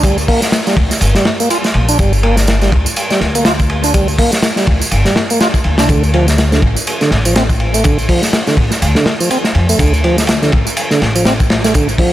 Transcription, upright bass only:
0, 0, Header, 1, 2, 480
1, 0, Start_track
1, 0, Key_signature, -2, "minor"
1, 0, Tempo, 487805
1, 39, Time_signature, 4, 2, 24, 8
1, 11934, End_track
2, 0, Start_track
2, 0, Title_t, "Upright bass"
2, 0, Program_c, 0, 32
2, 0, Note_on_c, 0, 38, 81
2, 245, Note_off_c, 0, 38, 0
2, 754, Note_on_c, 0, 38, 80
2, 868, Note_off_c, 0, 38, 0
2, 998, Note_on_c, 0, 31, 84
2, 1110, Note_off_c, 0, 31, 0
2, 1719, Note_on_c, 0, 34, 84
2, 1919, Note_off_c, 0, 34, 0
2, 1959, Note_on_c, 0, 31, 97
2, 2647, Note_off_c, 0, 31, 0
2, 2679, Note_on_c, 0, 38, 79
2, 2790, Note_off_c, 0, 38, 0
2, 3158, Note_on_c, 0, 38, 82
2, 4087, Note_off_c, 0, 38, 0
2, 4600, Note_on_c, 0, 38, 80
2, 4710, Note_off_c, 0, 38, 0
2, 4840, Note_on_c, 0, 31, 85
2, 4950, Note_off_c, 0, 31, 0
2, 5558, Note_on_c, 0, 38, 80
2, 5695, Note_off_c, 0, 38, 0
2, 5695, Note_on_c, 0, 36, 86
2, 5778, Note_off_c, 0, 36, 0
2, 5795, Note_on_c, 0, 38, 96
2, 6485, Note_off_c, 0, 38, 0
2, 6517, Note_on_c, 0, 33, 79
2, 6629, Note_off_c, 0, 33, 0
2, 7000, Note_on_c, 0, 33, 80
2, 7928, Note_off_c, 0, 33, 0
2, 8433, Note_on_c, 0, 33, 80
2, 8547, Note_off_c, 0, 33, 0
2, 8679, Note_on_c, 0, 38, 85
2, 8790, Note_off_c, 0, 38, 0
2, 9398, Note_on_c, 0, 41, 86
2, 9599, Note_off_c, 0, 41, 0
2, 9636, Note_on_c, 0, 38, 97
2, 10325, Note_off_c, 0, 38, 0
2, 10363, Note_on_c, 0, 33, 79
2, 10472, Note_off_c, 0, 33, 0
2, 10839, Note_on_c, 0, 33, 84
2, 11767, Note_off_c, 0, 33, 0
2, 11934, End_track
0, 0, End_of_file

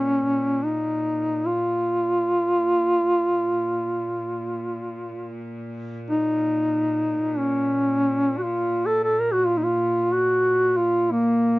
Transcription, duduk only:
0, 0, Header, 1, 2, 480
1, 0, Start_track
1, 0, Key_signature, -5, "minor"
1, 0, Tempo, 500000
1, 11127, End_track
2, 0, Start_track
2, 0, Title_t, "Duduk"
2, 0, Program_c, 0, 69
2, 0, Note_on_c, 0, 61, 86
2, 610, Note_on_c, 0, 63, 86
2, 624, Note_off_c, 0, 61, 0
2, 1400, Note_on_c, 0, 65, 89
2, 1415, Note_off_c, 0, 63, 0
2, 5243, Note_off_c, 0, 65, 0
2, 5854, Note_on_c, 0, 63, 90
2, 7087, Note_on_c, 0, 61, 89
2, 7102, Note_off_c, 0, 63, 0
2, 8040, Note_on_c, 0, 66, 62
2, 8054, Note_off_c, 0, 61, 0
2, 8091, Note_on_c, 0, 65, 87
2, 8106, Note_off_c, 0, 66, 0
2, 8505, Note_on_c, 0, 69, 91
2, 8520, Note_off_c, 0, 65, 0
2, 8672, Note_off_c, 0, 69, 0
2, 8678, Note_on_c, 0, 69, 85
2, 8826, Note_on_c, 0, 70, 87
2, 8840, Note_off_c, 0, 69, 0
2, 8949, Note_on_c, 0, 66, 93
2, 8963, Note_off_c, 0, 70, 0
2, 9085, Note_on_c, 0, 65, 91
2, 9099, Note_off_c, 0, 66, 0
2, 9191, Note_on_c, 0, 63, 74
2, 9206, Note_off_c, 0, 65, 0
2, 9253, Note_on_c, 0, 65, 93
2, 9268, Note_off_c, 0, 63, 0
2, 9719, Note_on_c, 0, 66, 94
2, 9734, Note_off_c, 0, 65, 0
2, 10336, Note_on_c, 0, 65, 92
2, 10350, Note_off_c, 0, 66, 0
2, 10669, Note_on_c, 0, 58, 87
2, 10684, Note_off_c, 0, 65, 0
2, 11127, Note_off_c, 0, 58, 0
2, 11127, End_track
0, 0, End_of_file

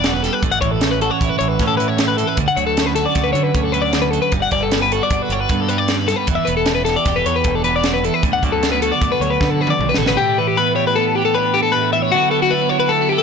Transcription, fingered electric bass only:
0, 0, Header, 1, 2, 480
1, 0, Start_track
1, 0, Key_signature, 2, "major"
1, 0, Tempo, 390117
1, 529, Time_signature, 5, 2, 24, 8
1, 16276, End_track
2, 0, Start_track
2, 0, Title_t, "Fingered electric bass"
2, 0, Program_c, 0, 33
2, 0, Note_on_c, 0, 28, 80
2, 350, Note_off_c, 0, 28, 0
2, 529, Note_on_c, 0, 33, 76
2, 722, Note_off_c, 0, 33, 0
2, 766, Note_on_c, 0, 33, 77
2, 1348, Note_off_c, 0, 33, 0
2, 1494, Note_on_c, 0, 33, 77
2, 1588, Note_off_c, 0, 33, 0
2, 1733, Note_on_c, 0, 33, 77
2, 1924, Note_off_c, 0, 33, 0
2, 1972, Note_on_c, 0, 45, 76
2, 2745, Note_off_c, 0, 45, 0
2, 2931, Note_on_c, 0, 38, 80
2, 3026, Note_off_c, 0, 38, 0
2, 3164, Note_on_c, 0, 38, 76
2, 3747, Note_off_c, 0, 38, 0
2, 3888, Note_on_c, 0, 38, 77
2, 4081, Note_off_c, 0, 38, 0
2, 4110, Note_on_c, 0, 50, 73
2, 4310, Note_off_c, 0, 50, 0
2, 4366, Note_on_c, 0, 38, 82
2, 5142, Note_off_c, 0, 38, 0
2, 5323, Note_on_c, 0, 31, 69
2, 5518, Note_off_c, 0, 31, 0
2, 5561, Note_on_c, 0, 31, 71
2, 6146, Note_off_c, 0, 31, 0
2, 6280, Note_on_c, 0, 31, 85
2, 6380, Note_off_c, 0, 31, 0
2, 6513, Note_on_c, 0, 31, 81
2, 6713, Note_off_c, 0, 31, 0
2, 6764, Note_on_c, 0, 43, 79
2, 7543, Note_off_c, 0, 43, 0
2, 7731, Note_on_c, 0, 28, 86
2, 7828, Note_off_c, 0, 28, 0
2, 7974, Note_on_c, 0, 28, 81
2, 8556, Note_off_c, 0, 28, 0
2, 8681, Note_on_c, 0, 28, 81
2, 8880, Note_off_c, 0, 28, 0
2, 8935, Note_on_c, 0, 40, 76
2, 9128, Note_off_c, 0, 40, 0
2, 9166, Note_on_c, 0, 28, 79
2, 9947, Note_off_c, 0, 28, 0
2, 10127, Note_on_c, 0, 38, 74
2, 10325, Note_off_c, 0, 38, 0
2, 10370, Note_on_c, 0, 38, 77
2, 10955, Note_off_c, 0, 38, 0
2, 11090, Note_on_c, 0, 38, 78
2, 11190, Note_off_c, 0, 38, 0
2, 11323, Note_on_c, 0, 38, 73
2, 11524, Note_off_c, 0, 38, 0
2, 11572, Note_on_c, 0, 50, 76
2, 11963, Note_off_c, 0, 50, 0
2, 12049, Note_on_c, 0, 35, 66
2, 12270, Note_off_c, 0, 35, 0
2, 12277, Note_on_c, 0, 33, 75
2, 12503, Note_off_c, 0, 33, 0
2, 16276, End_track
0, 0, End_of_file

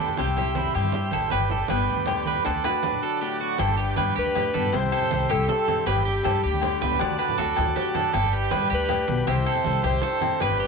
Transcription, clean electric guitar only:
0, 0, Header, 1, 3, 480
1, 0, Start_track
1, 0, Key_signature, 1, "major"
1, 0, Tempo, 379027
1, 1669, Time_signature, 12, 3, 24, 8
1, 13516, End_track
2, 0, Start_track
2, 0, Title_t, "Clean electric guitar"
2, 0, Program_c, 0, 27
2, 0, Note_on_c, 0, 69, 77
2, 208, Note_off_c, 0, 69, 0
2, 239, Note_on_c, 0, 67, 85
2, 461, Note_off_c, 0, 67, 0
2, 478, Note_on_c, 0, 67, 78
2, 701, Note_off_c, 0, 67, 0
2, 713, Note_on_c, 0, 64, 80
2, 939, Note_off_c, 0, 64, 0
2, 950, Note_on_c, 0, 67, 81
2, 1406, Note_off_c, 0, 67, 0
2, 1434, Note_on_c, 0, 69, 78
2, 1659, Note_off_c, 0, 69, 0
2, 1664, Note_on_c, 0, 71, 92
2, 1895, Note_off_c, 0, 71, 0
2, 1914, Note_on_c, 0, 69, 73
2, 2141, Note_off_c, 0, 69, 0
2, 2151, Note_on_c, 0, 71, 77
2, 2608, Note_off_c, 0, 71, 0
2, 2632, Note_on_c, 0, 67, 76
2, 2860, Note_off_c, 0, 67, 0
2, 2878, Note_on_c, 0, 71, 80
2, 3104, Note_off_c, 0, 71, 0
2, 3112, Note_on_c, 0, 69, 87
2, 3341, Note_off_c, 0, 69, 0
2, 3356, Note_on_c, 0, 71, 80
2, 3812, Note_off_c, 0, 71, 0
2, 3837, Note_on_c, 0, 69, 78
2, 4064, Note_off_c, 0, 69, 0
2, 4073, Note_on_c, 0, 67, 76
2, 4302, Note_off_c, 0, 67, 0
2, 4314, Note_on_c, 0, 66, 80
2, 4543, Note_off_c, 0, 66, 0
2, 4557, Note_on_c, 0, 69, 96
2, 4777, Note_off_c, 0, 69, 0
2, 4782, Note_on_c, 0, 67, 77
2, 5017, Note_off_c, 0, 67, 0
2, 5027, Note_on_c, 0, 71, 84
2, 5259, Note_off_c, 0, 71, 0
2, 5266, Note_on_c, 0, 67, 93
2, 5727, Note_off_c, 0, 67, 0
2, 5750, Note_on_c, 0, 69, 88
2, 5981, Note_off_c, 0, 69, 0
2, 6235, Note_on_c, 0, 69, 86
2, 6691, Note_off_c, 0, 69, 0
2, 6707, Note_on_c, 0, 67, 94
2, 6939, Note_off_c, 0, 67, 0
2, 6957, Note_on_c, 0, 69, 89
2, 7412, Note_off_c, 0, 69, 0
2, 7431, Note_on_c, 0, 71, 99
2, 7661, Note_off_c, 0, 71, 0
2, 7666, Note_on_c, 0, 67, 77
2, 7898, Note_off_c, 0, 67, 0
2, 7909, Note_on_c, 0, 69, 85
2, 8139, Note_off_c, 0, 69, 0
2, 8152, Note_on_c, 0, 67, 89
2, 8608, Note_off_c, 0, 67, 0
2, 8633, Note_on_c, 0, 71, 85
2, 8861, Note_off_c, 0, 71, 0
2, 8879, Note_on_c, 0, 74, 91
2, 9101, Note_off_c, 0, 74, 0
2, 9106, Note_on_c, 0, 71, 80
2, 9337, Note_off_c, 0, 71, 0
2, 9350, Note_on_c, 0, 69, 85
2, 9806, Note_off_c, 0, 69, 0
2, 9825, Note_on_c, 0, 67, 83
2, 10055, Note_off_c, 0, 67, 0
2, 10070, Note_on_c, 0, 69, 83
2, 10289, Note_off_c, 0, 69, 0
2, 10304, Note_on_c, 0, 69, 94
2, 10534, Note_off_c, 0, 69, 0
2, 10547, Note_on_c, 0, 67, 81
2, 10775, Note_off_c, 0, 67, 0
2, 10780, Note_on_c, 0, 71, 90
2, 11011, Note_off_c, 0, 71, 0
2, 11020, Note_on_c, 0, 67, 98
2, 11478, Note_off_c, 0, 67, 0
2, 11749, Note_on_c, 0, 67, 97
2, 11975, Note_off_c, 0, 67, 0
2, 11987, Note_on_c, 0, 69, 90
2, 12441, Note_off_c, 0, 69, 0
2, 12460, Note_on_c, 0, 67, 92
2, 12689, Note_off_c, 0, 67, 0
2, 12701, Note_on_c, 0, 69, 86
2, 13157, Note_off_c, 0, 69, 0
2, 13192, Note_on_c, 0, 71, 98
2, 13415, Note_off_c, 0, 71, 0
2, 13424, Note_on_c, 0, 67, 77
2, 13516, Note_off_c, 0, 67, 0
2, 13516, End_track
3, 0, Start_track
3, 0, Title_t, "Muted clean electric guitar strokes"
3, 5987, Note_on_c, 9, 29, 95
3, 6114, Note_off_c, 9, 29, 0
3, 11498, Note_on_c, 9, 29, 90
3, 11625, Note_off_c, 9, 29, 0
3, 13516, End_track
0, 0, End_of_file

